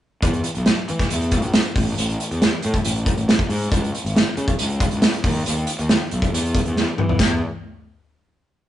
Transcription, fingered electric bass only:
0.22 0.39 E2 medium
0.57 0.73 B1 medium
0.90 0.98 E3 medium
1.11 1.43 E2 medium
1.43 1.60 A#1 medium
1.76 1.93 A1 medium
1.98 2.15 A1 medium
2.32 2.48 E2 medium
2.65 2.73 A2 medium
2.86 3.10 A1 medium
3.18 3.34 A1 medium
3.49 3.66 G#2 medium
3.72 3.89 C#2 medium
4.04 4.21 G#1 medium
4.38 4.46 C#3 medium
4.60 4.85 C#2 medium
4.93 5.09 C#2 medium
5.25 5.41 D#2 medium
5.48 5.64 D#2 medium
5.79 5.96 D#2 medium
6.12 6.20 B1 medium
6.32 6.57 E2 medium
6.66 6.82 E2 medium
7.00 7.16 E3 medium
7.20 7.40 E2 medium

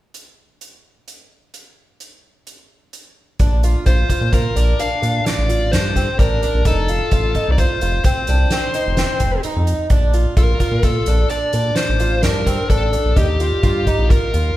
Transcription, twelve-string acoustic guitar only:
3.40 3.61 D4 medium
3.64 3.85 F4 medium
3.87 4.08 F4 medium
4.11 4.31 F4 medium
4.34 4.54 F4 medium
4.56 4.77 D4 medium
4.79 5.01 D4 medium
5.02 5.44 D4 medium
5.49 5.70 F4 medium
5.72 5.94 D4 medium
5.96 6.17 C4 medium
6.19 6.40 D4 medium
6.43 6.64 D4 medium
6.66 6.87 D#4 medium
6.89 7.10 F4 medium
7.13 7.33 F4 medium
7.36 7.56 D#4 medium
7.58 7.79 F4 medium
7.82 8.03 F4 medium
8.06 8.26 C4 medium
8.29 8.50 D4 medium
8.52 8.73 C4 medium
8.75 8.96 D#4 medium
8.98 9.40 C4 medium
9.45 9.87 D#4 medium
9.91 10.12 D4 medium
10.14 10.35 F4 medium
10.37 10.58 F4 medium
10.60 10.82 F4 medium
10.84 11.05 F4 medium
11.08 11.29 D4 medium
11.31 11.52 D4 medium
11.54 11.96 D4 medium
12.00 12.21 F4 medium
12.23 12.45 D4 medium
12.46 12.68 C4 medium
12.70 12.91 D4 medium
12.93 13.14 D4 medium
13.16 13.37 D#4 medium
13.40 13.61 F4 medium
13.63 13.84 F4 medium
13.87 14.08 D#4 medium
14.10 14.31 F4 medium
14.34 14.55 F4 medium

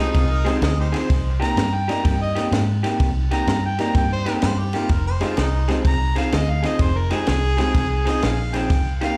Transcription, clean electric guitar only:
0.00 0.24 F3 medium
0.00 0.24 C4 medium
0.00 0.24 D#4 medium
0.00 0.23 G#4 medium
0.45 0.71 F3 medium
0.45 0.71 C4 medium
0.45 0.71 D#4 medium
0.45 0.71 G#4 medium
0.92 1.10 F3 medium
0.92 1.10 C4 medium
0.92 1.09 D#4 medium
0.92 1.09 G#4 medium
1.40 1.67 C3 medium
1.40 1.67 A#3 medium
1.40 1.66 D#4 medium
1.40 1.66 G4 medium
1.88 2.14 C3 medium
1.88 2.14 A#3 medium
1.88 2.14 D#4 medium
1.88 2.14 G4 medium
2.35 2.62 C3 medium
2.35 2.62 A#3 medium
2.35 2.61 D#4 medium
2.35 2.61 G4 medium
2.83 3.10 C3 medium
2.83 3.09 A#3 medium
2.83 3.09 D#4 medium
2.83 3.09 G4 medium
3.31 3.57 C3 medium
3.31 3.57 A#3 medium
3.31 3.57 D#4 medium
3.31 3.57 G4 medium
3.79 4.05 C3 medium
3.79 4.05 A#3 medium
3.79 4.04 D#4 medium
3.79 4.04 G4 medium
4.26 4.52 C3 medium
4.26 4.52 A#3 medium
4.26 4.52 D#4 medium
4.26 4.51 G4 medium
4.74 4.90 C3 medium
4.74 4.90 A#3 medium
4.74 4.90 D#4 medium
4.74 4.90 G4 medium
5.21 5.47 F3 medium
5.21 5.47 C4 medium
5.21 5.47 D#4 medium
5.21 5.47 G#4 medium
5.68 5.94 F3 medium
5.68 5.94 C4 medium
5.68 5.94 D#4 medium
5.68 5.94 G#4 medium
6.16 6.42 F3 medium
6.16 6.42 C4 medium
6.16 6.42 D#4 medium
6.16 6.41 G#4 medium
6.63 6.89 F3 medium
6.63 6.89 C4 medium
6.63 6.89 D#4 medium
6.63 6.89 G#4 medium
7.10 7.37 F3 medium
7.10 7.37 C4 medium
7.10 7.37 D#4 medium
7.10 7.36 G#4 medium
7.57 7.84 F3 medium
7.57 7.84 C4 medium
7.57 7.84 D#4 medium
7.57 7.83 G#4 medium
8.05 8.32 F3 medium
8.05 8.32 C4 medium
8.05 8.32 D#4 medium
8.05 8.31 G#4 medium
8.53 8.71 F3 medium
8.53 8.70 C4 medium
8.53 8.70 D#4 medium
8.53 8.70 G#4 medium
9.01 9.17 C3 medium
9.01 9.17 A#3 medium
9.01 9.17 D#4 medium
9.01 9.17 G4 medium

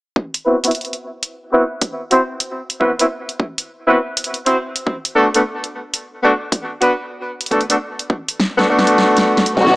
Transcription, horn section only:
0.46 0.56 B3 medium
0.46 0.56 C4 medium
0.46 0.56 E4 medium
0.46 0.56 F#4 medium
0.46 0.56 B4 medium
0.64 0.70 B3 medium
0.64 0.70 C4 medium
0.64 0.70 E4 medium
0.64 0.70 F#4 medium
0.64 0.70 B4 medium
1.52 1.62 B3 medium
1.52 1.62 C4 medium
1.52 1.62 E4 medium
1.52 1.62 F#4 medium
1.52 1.62 B4 medium
2.11 2.21 C4 medium
2.11 2.21 E4 medium
2.11 2.21 F#4 medium
2.11 2.21 C5 medium
2.80 2.91 B3 medium
2.80 2.91 C4 medium
2.80 2.91 E4 medium
2.80 2.91 F#4 medium
2.80 2.91 B4 medium
2.99 3.05 B3 medium
2.99 3.05 C4 medium
2.99 3.05 E4 medium
2.99 3.05 F#4 medium
2.99 3.05 B4 medium
3.87 3.97 B3 medium
3.87 3.97 C4 medium
3.87 3.97 E4 medium
3.87 3.97 F#4 medium
3.87 3.97 B4 medium
4.46 4.56 C4 medium
4.46 4.56 E4 medium
4.46 4.56 F#4 medium
4.46 4.56 C5 medium
5.16 5.26 A3 medium
5.16 5.26 B3 medium
5.16 5.26 D4 medium
5.16 5.26 F#4 medium
5.16 5.26 A4 medium
5.34 5.41 A3 medium
5.34 5.41 B3 medium
5.34 5.41 D4 medium
5.34 5.41 F#4 medium
5.34 5.41 A4 medium
6.23 6.32 A3 medium
6.23 6.32 B3 medium
6.23 6.32 D4 medium
6.23 6.32 F#4 medium
6.23 6.32 A4 medium
6.81 6.91 B3 medium
6.81 6.91 D4 medium
6.81 6.91 F#4 medium
6.81 6.91 B4 medium
7.51 7.61 A3 medium
7.51 7.61 B3 medium
7.51 7.61 D4 medium
7.51 7.61 F#4 medium
7.51 7.61 A4 medium
7.69 7.76 A3 medium
7.69 7.76 B3 medium
7.69 7.76 D4 medium
7.69 7.76 F#4 medium
7.69 7.76 A4 medium
8.57 8.66 A3 medium
8.57 8.66 B3 medium
8.57 8.66 D4 medium
8.57 8.66 F#4 medium
8.57 8.66 A4 loud
8.68 9.56 A3 medium
8.68 9.56 B3 medium
8.68 9.56 D4 medium
8.68 9.56 F#4 medium
8.68 9.56 A4 loud

